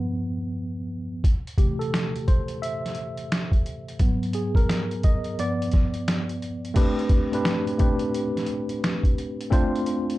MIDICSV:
0, 0, Header, 1, 3, 480
1, 0, Start_track
1, 0, Tempo, 689655
1, 864, Time_signature, 4, 2, 24, 8
1, 7088, End_track
2, 0, Start_track
2, 0, Title_t, "Tine electric piano"
2, 0, Program_c, 0, 4
2, 0, Note_on_c, 0, 43, 53
2, 0, Note_on_c, 0, 53, 47
2, 0, Note_on_c, 0, 59, 60
2, 38, Control_c, 0, 64, 127
2, 595, Note_off_c, 0, 43, 0
2, 597, Note_off_c, 0, 53, 0
2, 599, Note_off_c, 0, 59, 0
2, 873, Control_c, 0, 64, 0
2, 995, Control_c, 0, 64, 127
2, 1101, Note_on_c, 0, 67, 67
2, 1103, Note_on_c, 0, 48, 47
2, 1106, Note_on_c, 0, 52, 48
2, 1109, Note_on_c, 0, 57, 58
2, 1246, Note_on_c, 0, 69, 81
2, 1262, Note_off_c, 0, 67, 0
2, 1449, Note_off_c, 0, 48, 0
2, 1451, Note_off_c, 0, 52, 0
2, 1452, Note_off_c, 0, 57, 0
2, 1585, Note_on_c, 0, 72, 83
2, 1588, Note_off_c, 0, 69, 0
2, 1693, Note_off_c, 0, 72, 0
2, 1825, Note_on_c, 0, 76, 101
2, 2517, Note_off_c, 0, 76, 0
2, 2786, Note_on_c, 0, 44, 52
2, 2791, Note_on_c, 0, 54, 51
2, 2794, Control_c, 0, 64, 0
2, 2795, Note_on_c, 0, 59, 58
2, 2896, Control_c, 0, 64, 127
2, 3026, Note_on_c, 0, 68, 75
2, 3172, Note_on_c, 0, 70, 86
2, 3184, Note_off_c, 0, 68, 0
2, 3477, Note_off_c, 0, 44, 0
2, 3478, Note_off_c, 0, 70, 0
2, 3480, Note_off_c, 0, 54, 0
2, 3481, Note_off_c, 0, 59, 0
2, 3509, Note_on_c, 0, 75, 91
2, 3747, Note_on_c, 0, 43, 50
2, 3752, Note_on_c, 0, 53, 51
2, 3754, Note_off_c, 0, 75, 0
2, 3754, Control_c, 0, 64, 0
2, 3755, Note_on_c, 0, 59, 57
2, 3755, Note_on_c, 0, 74, 91
2, 3897, Control_c, 0, 64, 127
2, 4442, Note_off_c, 0, 74, 0
2, 4678, Note_off_c, 0, 43, 0
2, 4680, Note_off_c, 0, 53, 0
2, 4682, Note_off_c, 0, 59, 0
2, 4691, Note_on_c, 0, 57, 105
2, 4696, Note_on_c, 0, 60, 93
2, 4704, Note_on_c, 0, 62, 93
2, 4707, Note_on_c, 0, 67, 95
2, 4711, Note_on_c, 0, 71, 106
2, 4712, Control_c, 0, 64, 0
2, 4830, Control_c, 0, 64, 127
2, 4984, Note_off_c, 0, 57, 0
2, 4986, Note_off_c, 0, 60, 0
2, 4990, Note_off_c, 0, 62, 0
2, 4992, Note_off_c, 0, 67, 0
2, 4993, Note_off_c, 0, 71, 0
2, 5093, Note_on_c, 0, 57, 77
2, 5099, Note_on_c, 0, 60, 71
2, 5101, Note_on_c, 0, 62, 77
2, 5107, Note_on_c, 0, 67, 75
2, 5113, Note_on_c, 0, 71, 96
2, 5362, Note_off_c, 0, 57, 0
2, 5364, Note_off_c, 0, 60, 0
2, 5365, Note_off_c, 0, 62, 0
2, 5368, Note_off_c, 0, 67, 0
2, 5371, Note_off_c, 0, 71, 0
2, 5417, Note_on_c, 0, 57, 78
2, 5422, Note_on_c, 0, 60, 72
2, 5426, Note_on_c, 0, 62, 68
2, 5429, Note_on_c, 0, 67, 69
2, 5434, Note_on_c, 0, 71, 80
2, 6160, Note_off_c, 0, 57, 0
2, 6163, Note_off_c, 0, 60, 0
2, 6165, Note_off_c, 0, 62, 0
2, 6167, Note_off_c, 0, 67, 0
2, 6169, Note_off_c, 0, 71, 0
2, 6615, Note_on_c, 0, 57, 100
2, 6617, Note_on_c, 0, 60, 104
2, 6623, Note_on_c, 0, 62, 99
2, 6627, Note_on_c, 0, 65, 108
2, 6633, Note_on_c, 0, 72, 107
2, 6634, Control_c, 0, 64, 0
2, 6734, Control_c, 0, 64, 127
2, 7088, Note_off_c, 0, 57, 0
2, 7088, Note_off_c, 0, 60, 0
2, 7088, Note_off_c, 0, 62, 0
2, 7088, Note_off_c, 0, 65, 0
2, 7088, Note_off_c, 0, 72, 0
2, 7088, End_track
3, 0, Start_track
3, 0, Title_t, "Drums"
3, 863, Note_on_c, 9, 36, 81
3, 867, Note_on_c, 9, 42, 71
3, 933, Note_off_c, 9, 36, 0
3, 936, Note_off_c, 9, 42, 0
3, 1025, Note_on_c, 9, 42, 38
3, 1095, Note_off_c, 9, 42, 0
3, 1097, Note_on_c, 9, 36, 80
3, 1100, Note_on_c, 9, 42, 68
3, 1167, Note_off_c, 9, 36, 0
3, 1170, Note_off_c, 9, 42, 0
3, 1262, Note_on_c, 9, 42, 46
3, 1332, Note_off_c, 9, 42, 0
3, 1349, Note_on_c, 9, 26, 83
3, 1349, Note_on_c, 9, 38, 98
3, 1359, Note_on_c, 9, 42, 74
3, 1419, Note_off_c, 9, 26, 0
3, 1419, Note_off_c, 9, 38, 0
3, 1428, Note_off_c, 9, 42, 0
3, 1501, Note_on_c, 9, 42, 41
3, 1570, Note_off_c, 9, 42, 0
3, 1586, Note_on_c, 9, 42, 61
3, 1587, Note_on_c, 9, 36, 80
3, 1655, Note_off_c, 9, 42, 0
3, 1656, Note_off_c, 9, 36, 0
3, 1728, Note_on_c, 9, 42, 43
3, 1798, Note_off_c, 9, 42, 0
3, 1832, Note_on_c, 9, 42, 74
3, 1901, Note_off_c, 9, 42, 0
3, 1989, Note_on_c, 9, 38, 26
3, 1989, Note_on_c, 9, 42, 38
3, 2051, Note_off_c, 9, 42, 0
3, 2051, Note_on_c, 9, 42, 51
3, 2058, Note_off_c, 9, 38, 0
3, 2121, Note_off_c, 9, 42, 0
3, 2209, Note_on_c, 9, 42, 46
3, 2279, Note_off_c, 9, 42, 0
3, 2310, Note_on_c, 9, 42, 67
3, 2311, Note_on_c, 9, 26, 87
3, 2311, Note_on_c, 9, 38, 115
3, 2379, Note_off_c, 9, 42, 0
3, 2381, Note_off_c, 9, 26, 0
3, 2381, Note_off_c, 9, 38, 0
3, 2448, Note_on_c, 9, 36, 83
3, 2458, Note_on_c, 9, 42, 44
3, 2517, Note_off_c, 9, 36, 0
3, 2527, Note_off_c, 9, 42, 0
3, 2547, Note_on_c, 9, 42, 54
3, 2616, Note_off_c, 9, 42, 0
3, 2704, Note_on_c, 9, 42, 47
3, 2773, Note_off_c, 9, 42, 0
3, 2780, Note_on_c, 9, 42, 74
3, 2782, Note_on_c, 9, 36, 88
3, 2849, Note_off_c, 9, 42, 0
3, 2851, Note_off_c, 9, 36, 0
3, 2944, Note_on_c, 9, 42, 32
3, 3014, Note_off_c, 9, 42, 0
3, 3016, Note_on_c, 9, 42, 70
3, 3086, Note_off_c, 9, 42, 0
3, 3165, Note_on_c, 9, 36, 81
3, 3181, Note_on_c, 9, 42, 49
3, 3235, Note_off_c, 9, 36, 0
3, 3250, Note_off_c, 9, 42, 0
3, 3267, Note_on_c, 9, 26, 77
3, 3268, Note_on_c, 9, 38, 91
3, 3277, Note_on_c, 9, 42, 71
3, 3337, Note_off_c, 9, 26, 0
3, 3337, Note_off_c, 9, 38, 0
3, 3346, Note_off_c, 9, 42, 0
3, 3419, Note_on_c, 9, 42, 45
3, 3488, Note_off_c, 9, 42, 0
3, 3504, Note_on_c, 9, 42, 65
3, 3508, Note_on_c, 9, 36, 82
3, 3573, Note_off_c, 9, 42, 0
3, 3578, Note_off_c, 9, 36, 0
3, 3649, Note_on_c, 9, 42, 44
3, 3719, Note_off_c, 9, 42, 0
3, 3750, Note_on_c, 9, 42, 81
3, 3820, Note_off_c, 9, 42, 0
3, 3911, Note_on_c, 9, 42, 45
3, 3978, Note_off_c, 9, 42, 0
3, 3978, Note_on_c, 9, 42, 52
3, 3991, Note_on_c, 9, 36, 81
3, 3994, Note_on_c, 9, 38, 32
3, 4047, Note_off_c, 9, 42, 0
3, 4061, Note_off_c, 9, 36, 0
3, 4064, Note_off_c, 9, 38, 0
3, 4132, Note_on_c, 9, 42, 52
3, 4202, Note_off_c, 9, 42, 0
3, 4230, Note_on_c, 9, 42, 70
3, 4232, Note_on_c, 9, 26, 87
3, 4232, Note_on_c, 9, 38, 103
3, 4300, Note_off_c, 9, 42, 0
3, 4302, Note_off_c, 9, 26, 0
3, 4302, Note_off_c, 9, 38, 0
3, 4380, Note_on_c, 9, 42, 48
3, 4450, Note_off_c, 9, 42, 0
3, 4470, Note_on_c, 9, 42, 50
3, 4540, Note_off_c, 9, 42, 0
3, 4626, Note_on_c, 9, 42, 45
3, 4696, Note_off_c, 9, 42, 0
3, 4703, Note_on_c, 9, 49, 81
3, 4705, Note_on_c, 9, 36, 94
3, 4706, Note_on_c, 9, 42, 81
3, 4773, Note_off_c, 9, 49, 0
3, 4775, Note_off_c, 9, 36, 0
3, 4776, Note_off_c, 9, 42, 0
3, 4865, Note_on_c, 9, 42, 34
3, 4935, Note_off_c, 9, 42, 0
3, 4937, Note_on_c, 9, 42, 72
3, 4938, Note_on_c, 9, 36, 80
3, 5007, Note_off_c, 9, 42, 0
3, 5008, Note_off_c, 9, 36, 0
3, 5103, Note_on_c, 9, 42, 49
3, 5172, Note_off_c, 9, 42, 0
3, 5186, Note_on_c, 9, 26, 88
3, 5187, Note_on_c, 9, 38, 108
3, 5196, Note_on_c, 9, 42, 72
3, 5256, Note_off_c, 9, 26, 0
3, 5256, Note_off_c, 9, 38, 0
3, 5266, Note_off_c, 9, 42, 0
3, 5341, Note_on_c, 9, 42, 44
3, 5410, Note_off_c, 9, 42, 0
3, 5424, Note_on_c, 9, 42, 66
3, 5428, Note_on_c, 9, 36, 89
3, 5493, Note_off_c, 9, 42, 0
3, 5497, Note_off_c, 9, 36, 0
3, 5563, Note_on_c, 9, 42, 50
3, 5633, Note_off_c, 9, 42, 0
3, 5669, Note_on_c, 9, 42, 79
3, 5738, Note_off_c, 9, 42, 0
3, 5826, Note_on_c, 9, 38, 32
3, 5826, Note_on_c, 9, 42, 47
3, 5891, Note_off_c, 9, 42, 0
3, 5891, Note_on_c, 9, 42, 53
3, 5896, Note_off_c, 9, 38, 0
3, 5961, Note_off_c, 9, 42, 0
3, 6050, Note_on_c, 9, 42, 49
3, 6119, Note_off_c, 9, 42, 0
3, 6151, Note_on_c, 9, 42, 67
3, 6153, Note_on_c, 9, 26, 87
3, 6153, Note_on_c, 9, 38, 101
3, 6221, Note_off_c, 9, 42, 0
3, 6222, Note_off_c, 9, 26, 0
3, 6223, Note_off_c, 9, 38, 0
3, 6289, Note_on_c, 9, 36, 75
3, 6298, Note_on_c, 9, 42, 49
3, 6358, Note_off_c, 9, 36, 0
3, 6367, Note_off_c, 9, 42, 0
3, 6391, Note_on_c, 9, 42, 59
3, 6461, Note_off_c, 9, 42, 0
3, 6547, Note_on_c, 9, 42, 52
3, 6616, Note_off_c, 9, 42, 0
3, 6626, Note_on_c, 9, 36, 90
3, 6629, Note_on_c, 9, 42, 78
3, 6696, Note_off_c, 9, 36, 0
3, 6699, Note_off_c, 9, 42, 0
3, 6790, Note_on_c, 9, 42, 35
3, 6859, Note_off_c, 9, 42, 0
3, 6865, Note_on_c, 9, 42, 69
3, 6934, Note_off_c, 9, 42, 0
3, 7028, Note_on_c, 9, 42, 49
3, 7088, Note_off_c, 9, 42, 0
3, 7088, End_track
0, 0, End_of_file